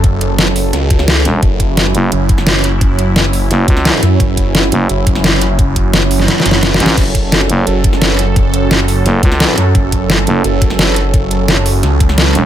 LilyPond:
<<
  \new Staff \with { instrumentName = "Analog synth pad" } { \time 4/4 \key fis \minor \tempo 4 = 173 << { a'1 | e'1~ | e'1~ | e'1~ |
e'1 | a'1~ | a'1~ | a'1~ |
a'1 | } \\ { <fis cis'>1~ | <fis cis'>1~ | <fis cis'>1~ | <fis cis'>1~ |
<fis cis'>1~ | <fis cis'>1~ | <fis cis'>1~ | <fis cis'>1~ |
<fis cis'>1 | } >> }
  \new Staff \with { instrumentName = "Detuned saw bass" } { \clef bass \time 4/4 \key fis \minor fis,,2 cis,4. r8 | fis,,4. r8 fis,,2~ | fis,,2 r4. fis,8 | fis,,4. r8 fis,,2~ |
fis,,2 r8 fis,,4 r8 | fis,,4. r8 fis,,2~ | fis,,2 r4. fis,8 | fis,,4. r8 fis,,2~ |
fis,,2 cis,4. r8 | }
  \new Staff \with { instrumentName = "FM bass" } { \clef bass \time 4/4 \key fis \minor r2. r8 e,,8 | r4. fis,,8 r2 | r2 fis,,8 cis,4 r8 | r4. fis,,8 r2 |
r2. r8 a,,8 | r4. fis,,8 r2 | r2 fis,,8 cis,4 r8 | r4. fis,,8 r2 |
r2. r8 e,,8 | }
  \new DrumStaff \with { instrumentName = "Drums" } \drummode { \time 4/4 <hh bd>8 hh8 <hh sn>16 sn16 hho8 <hh sn>8 <hh bd>16 sn16 <hh sn>8 <hh sn>8 | <hh bd>8 <hh bd>8 <hh sn>16 sn16 hh8 hh8 <hh bd>16 sn16 <hh sn>8 hh8 | <hh bd>8 hh8 <hh sn>16 sn16 hho8 <hh sn>8 <hh bd>16 sn16 <hh sn>8 <hh sn>8 | <hh bd>8 <hh bd>8 <hh sn>16 sn16 hh8 hh8 <hh bd>16 sn16 <hh sn>8 hh8 |
<hh bd>8 <hh bd>8 <hh sn>16 sn16 hho16 sn16 \tuplet 3/2 { <hh sn>16 r16 sn16 hh16 sn16 r16 <hh sn>16 r16 sn16 hh16 sn16 r16 } | <cymc hh bd>8 <hh bd>8 <hh sn>16 sn16 hh8 hh8 <hh bd>16 sn16 <hh sn>8 hh8 | <hh bd>8 hh8 <hh sn>16 sn16 hho8 <hh sn>8 <hh bd>16 sn16 <hh sn>8 <hh sn>8 | <hh bd>8 <hh bd>8 <hh sn>16 sn16 hh8 hh8 <hh bd>16 sn16 <hh sn>8 hh8 |
<hh bd>8 hh8 <hh sn>16 sn16 hho8 <hh sn>8 <hh bd>16 sn16 <hh sn>8 <hh sn>8 | }
>>